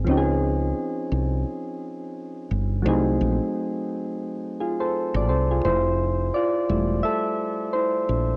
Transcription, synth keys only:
0.05 F3 C4 C#4
0.10 D#4 G4
0.18 G#4
2.82 F#3 A3 C4
2.87 D#4 G#4
4.60 F4 G#4
4.80 A4 C5
5.16 D5
5.29 A4 C5
5.51 F4 G#4
5.65 E4 C5
6.34 F4 D5
6.69 G3 A3 E4
7.03 A4 E5
7.73 E4 C5

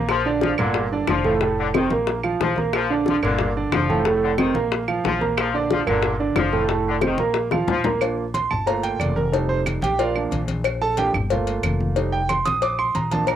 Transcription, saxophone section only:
0.09 F3
0.42 F3
0.58 D3
1.08 F3
1.59 D3
1.75 D#3
2.41 F3
2.74 F3
3.08 F3
3.24 D3
3.74 F3
4.22 D3
4.39 D#3
5.06 F3
5.39 F3
5.71 F3
5.88 D3
6.37 F3
6.87 D3
7.05 D#3
7.69 F3

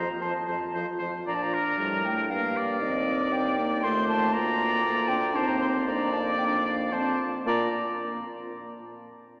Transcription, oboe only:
0.21 C5
0.47 C5
0.74 C5
0.99 C5
1.27 D5
1.54 A#4
2.30 A#4
2.57 D5
3.83 C5
4.34 D5
5.36 C5
5.87 D5
6.92 C5
7.47 D5

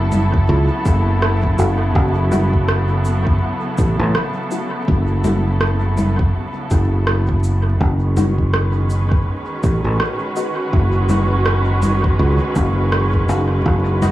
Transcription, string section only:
Already playing: C#3 F#3 B3 E4 A4
7.81 D#3
7.97 G#3 C#4
8.48 B4
9.53 F#4

